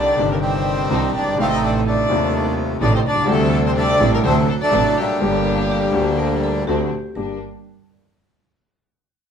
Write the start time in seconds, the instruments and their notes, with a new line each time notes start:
Already playing: double bass C2, upright piano C2 C3 G3 D4, bandoneon D3 D#3 G3 D4, string section C4 D4, violin D5
0.16 upright piano G1 G2 C3 D#3 G3 D4, double bass G1, string section C4 D4
0.32 bandoneon A#3, violin A#4
0.41 bandoneon D#3 G3 C4, violin C5
0.90 upright piano C2 C3 D#3 G3 D4, double bass C2, string section C4 D4 D#4
1.15 double bass G1, bandoneon D4, violin D5
1.21 upright piano F#1
1.27 upright piano G1
1.33 upright piano G#1 C3 D#3
1.38 upright piano A1 A2 A3 D#4, double bass A1, string section A3 C4 D#4, bandoneon A3 C4 F4, violin F5
1.50 bandoneon D#4, violin D#5
1.64 bandoneon D4, violin D5
1.75 bandoneon C4, violin C5
1.85 bandoneon A3 D4, violin D5
2.08 upright piano D#1 D#2 C3 D#3 A3 C4, double bass D#2, string section D#3 A3 C4
2.80 upright piano A1 A2 C3 D#3 A3 D#4, double bass A1, string section A3 C4 D#4, bandoneon D4, violin D5
2.95 bandoneon C4, violin C5
3.06 double bass C2, bandoneon D4, violin D5
3.11 upright piano B1 C2
3.20 upright piano C#2
3.24 upright piano D2 C3 D3 G3 A3 D4, string section G3
3.29 double bass D2, bandoneon C3 A3, string section C4 D4, violin A4
3.66 bandoneon C4, violin C5
3.76 bandoneon G3 A3 D4, violin D5
4.00 upright piano A1 A2 C3 G3 A3 D4, double bass A1, string section G3 C4 D4
4.14 bandoneon A#3, violin A#4
4.23 upright piano D2 C3 D3 F#3 A3 D4, double bass D2, string section F#3 C4 D4, bandoneon F#3 A3 C4, violin C5
4.49 bandoneon A3, violin A4
4.61 bandoneon F#3 A3 D4, violin D5
4.71 upright piano A1 A2 C3 F#3 A3 D4, double bass A1, string section F#3 C4 D4
4.97 bandoneon A#2 D3 G3, violin G4
5.20 double bass G1, upright piano G1 G2 D3 G3 A#3 G4, string section G3 A#3 D4
5.71 vibraphone G4
5.93 upright piano D2 D3 G3 A#3 G4, double bass D2, string section G3 A#3 D4
6.13 vibraphone A4
6.19 vibraphone A#4
6.44 vibraphone A4
6.67 upright piano D2 D3 A3 C4 F#4, double bass D2, string section F#3 C4 D4, vibraphone G4
7.15 double bass G1, upright piano G2 A#3 D4 G4, string section G3 A#3 D4, vibraphone A#4